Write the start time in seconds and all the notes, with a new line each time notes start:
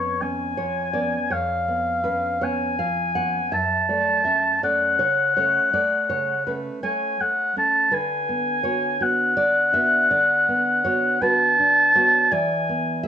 Already playing: F2 B3 C#4 B4 C#5
0.21 B3 C#4 G#5
0.57 F3 C#5
0.93 B3 C#4 D5
1.30 F2 C#5 F5
1.68 B3
2.04 B3 C#4 B4
2.41 B3 C#4 C#5 G#5
2.79 F3 F5
3.15 B3 C#4 F#5
3.52 F#2 E5 A5
3.89 A3 D5
4.25 A3 C#4 E5
4.63 A3 C#4 D5 F#5
4.99 C#3 C#5
5.37 A3 C#4 C#5
5.73 A3 D5
6.09 C#3 C#5
6.47 A3 C#4 B4
6.83 A3 C#4 C#5 G#5
7.20 A3 F#5
7.56 A3 C#4 A5
7.91 D3 B4 G#5
8.29 B3
8.64 B3 F#4 C#5
9.01 B3 F#4 F#5
9.37 D4 D5
9.74 B3 F#4 E5
10.11 D3 D5
10.48 B3
10.84 B3 F#4 C#5
11.22 B3 F#4 B4 A5
11.59 D4
11.95 B3 F#4 C#5
12.32 E3 D5 G#5
12.69 B3
13.03 G#4 E5